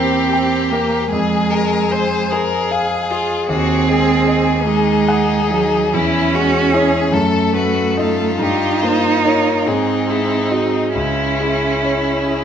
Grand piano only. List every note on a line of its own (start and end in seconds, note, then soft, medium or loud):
0.00 1.07 E2 soft
0.00 1.14 A#3 soft
0.00 0.56 A#4 soft
0.00 0.16 C5 soft
0.33 0.96 G5 soft
0.73 1.12 A#4 soft
1.12 3.46 F2 soft
1.51 2.15 G#3 soft
1.91 2.55 C5 soft
2.32 2.95 G#4 soft
2.71 3.34 F5 soft
3.11 3.50 G#4 soft
3.49 5.90 D#2 soft
3.88 4.52 G#3 soft
4.27 4.92 D#5 soft
4.67 5.34 G#4 soft
5.08 5.77 F#5 soft
5.51 5.93 G#4 soft
5.93 7.09 E2 soft
6.34 6.97 G#3 soft
6.74 7.09 E4 soft
6.74 7.09 C#5 soft
7.12 8.36 F#2 soft
7.53 8.23 A3 soft
7.97 8.36 D#4 soft
7.97 8.36 D#5 soft
8.39 9.62 G2 soft
8.83 9.50 A#3 soft
9.24 9.62 D#4 soft
9.24 9.62 C#5 soft
9.66 10.91 G#2 soft
10.07 10.77 G#3 soft
10.51 10.91 F#4 soft
10.51 10.91 D#5 soft
10.95 12.44 C#2 soft
11.40 12.09 G#3 soft
11.84 12.44 C#5 soft
12.25 12.44 G#4 soft